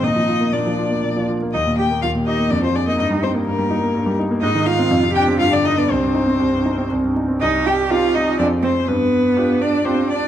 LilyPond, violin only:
\new Staff \with { instrumentName = "Violin" } { \time 3/4 \key ees \major \tempo 4 = 123 ees''4 d''4. r8 | ees''8 g''8 f''8 ees''8 d''16 c''16 d''16 ees''16 | ees''8 c''8 bes'4. r8 | \key c \minor ees''8 f''4 g''8 f''16 d''16 ees''16 d''16 |
c''2 r4 | ees''8 g''8 f''8 ees''8 d''8 c''8 | b'4. d''8 c''8 d''8 | }